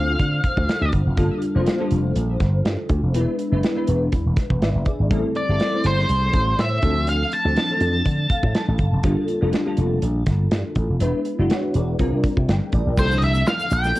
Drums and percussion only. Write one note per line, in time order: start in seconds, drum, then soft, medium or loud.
0.19 kick medium
0.19 closed hi-hat medium
0.44 kick medium
0.44 closed hi-hat medium
0.57 kick medium
0.69 snare loud
0.69 closed hi-hat medium
0.92 kick medium
0.92 closed hi-hat medium
1.17 kick loud
1.17 closed hi-hat medium
1.42 closed hi-hat medium
1.66 snare medium
1.66 closed hi-hat medium
1.91 closed hi-hat medium
2.15 closed hi-hat medium
2.40 kick medium
2.40 snare soft
2.40 closed hi-hat medium
2.65 snare medium
2.65 closed hi-hat medium
2.89 kick medium
2.89 closed hi-hat medium
3.14 closed hi-hat medium
3.39 closed hi-hat medium
3.63 snare medium
3.63 closed hi-hat medium
3.87 closed hi-hat medium
4.12 kick medium
4.12 closed hi-hat medium
4.37 kick medium
4.37 snare soft
4.37 closed hi-hat medium
4.50 kick medium
4.62 snare loud
4.62 closed hi-hat medium
4.85 kick medium
4.85 closed hi-hat medium
5.11 kick loud
5.11 closed hi-hat medium
5.35 closed hi-hat medium
5.60 snare medium
5.60 closed hi-hat medium
5.84 closed hi-hat medium
5.99 snare soft
6.09 closed hi-hat medium
6.33 kick medium
6.33 closed hi-hat medium
6.59 snare loud
6.59 closed hi-hat medium
6.82 kick medium
6.82 closed hi-hat medium
7.07 closed hi-hat medium
7.32 closed hi-hat medium
7.56 snare medium
7.56 closed hi-hat medium
7.80 closed hi-hat medium
8.05 kick medium
8.05 closed hi-hat medium
8.30 kick medium
8.30 closed hi-hat medium
8.43 kick medium
8.55 snare loud
8.55 closed hi-hat medium
8.78 kick medium
8.78 closed hi-hat medium
9.03 kick loud
9.03 closed hi-hat medium
9.28 closed hi-hat medium
9.53 snare medium
9.53 closed hi-hat medium
9.77 closed hi-hat medium
10.02 closed hi-hat medium
10.26 kick medium
10.26 snare soft
10.26 closed hi-hat medium
10.51 snare loud
10.51 closed hi-hat medium
10.75 kick medium
10.75 closed hi-hat medium
11.00 closed hi-hat medium
11.25 closed hi-hat medium
11.50 snare medium
11.50 closed hi-hat medium
11.74 closed hi-hat medium
11.99 kick medium
11.99 closed hi-hat medium
12.24 kick medium
12.24 closed hi-hat medium
12.37 kick medium
12.49 snare loud
12.49 closed hi-hat medium
12.72 kick medium
12.72 closed hi-hat medium
12.97 kick loud
12.97 crash medium
12.97 shaker medium
13.11 shaker soft
13.22 closed hi-hat medium
13.34 closed hi-hat medium
13.34 shaker soft
13.47 snare loud
13.47 shaker medium
13.59 closed hi-hat soft
13.59 shaker soft
13.71 closed hi-hat medium
13.71 shaker medium
13.84 snare soft
13.84 closed hi-hat soft
13.84 shaker soft
13.95 closed hi-hat medium
13.95 shaker medium